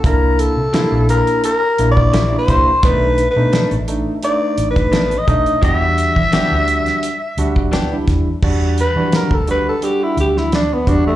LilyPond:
<<
  \new Staff \with { instrumentName = "Tenor saxophone" } { \time 4/4 \key e \minor \tempo 4 = 86 bes'8 a'4 bes'8 \tuplet 3/2 { bes'4 d''8~ d''8 c''4 } | \tuplet 3/2 { b'4 b'8~ } b'8 r8 \tuplet 3/2 { d''4 b'8~ b'8 dis''4 } | e''2. r4 | r8 b'8 ais'16 a'16 b'16 a'16 g'16 e'16 g'16 e'16 d'16 b16 d'16 a16 | }
  \new Staff \with { instrumentName = "Tine electric piano" } { \time 4/4 \key e \minor <bes d' e'>8. r16 <bes d' e'>4 r8 <bes d' e'>8 r16 <bes d' e'>8 r16 | <a d' dis'>8 r16 <a d' dis'>8 r16 <a d' dis'>16 r16 <a d' dis'>4 r8 <a d' dis'>16 r16 | <g d' fis'>8. r16 <g d' fis'>4 r8 <g d' fis'>8 r16 <g d' e'>8 r16 | <g d' fis'>8 r16 <g d' fis'>8 r16 <g d' fis'>16 r16 <g d' fis'>4 r8 <g d' fis'>16 r16 | }
  \new Staff \with { instrumentName = "Clean electric guitar" } { \time 4/4 \key e \minor r4 <c g bes e'>8 r4. <c g bes e'>8 <g bes e'>8 | <b, dis a d'>8 r8 <b, dis a d'>8 r4. <b, dis a d'>8 r8 | <e b d' g'>8 r8 <e b d' g'>8 r4. <e b d' g'>8 r8 | r1 | }
  \new Staff \with { instrumentName = "Fingered electric bass" } { \clef bass \time 4/4 \key e \minor c,8. c8 bes,,8 r8. bes,,4 c,16 r16 | b,,8. b,8 a,,8 r8. a,,4 b,,16 r16 | e,8. e8 d,8 r8. d,4 e,16 r16 | e,8. e8 d,8 r8. d,4 e,16 r16 | }
  \new DrumStaff \with { instrumentName = "Drums" } \drummode { \time 4/4 <hh bd>8 hh8 <hh sn>8 hh16 hh16 hh8 hh16 bd16 <hh sn>8 <hh bd>8 | <hh bd>8 hh8 <hh sn>16 hh16 hh8 hh8 hh16 <hh bd>16 <hh sn>16 hh16 <hh bd>16 hh16 | <hh bd>8 hh16 bd16 <hh sn>8 hh16 <hh sn>16 hh8 hh16 bd16 <hh sn>8 <hh bd sn>8 | <cymc bd>8 hh8 <hh sn>16 bd16 hh8 hh8 hh16 sn16 <hh sn>8 <hh bd>8 | }
>>